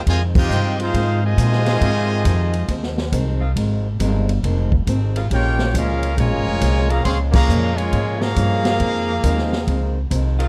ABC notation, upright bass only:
X:1
M:4/4
L:1/8
Q:"Swing" 1/4=137
K:Fm
V:1 name="Upright bass" clef=bass
F,,2 G,,2 A,,2 B,,2 | A,,2 F,,2 E,,2 C,,2 | A,,,2 G,,,2 F,,,2 A,,,2 | B,,,2 D,,2 (3B,,, A,,, F,,, C,,2 |
D,,2 F,,2 A,,2 G,,2 | F,,2 E,,2 D,,2 C,,2 |]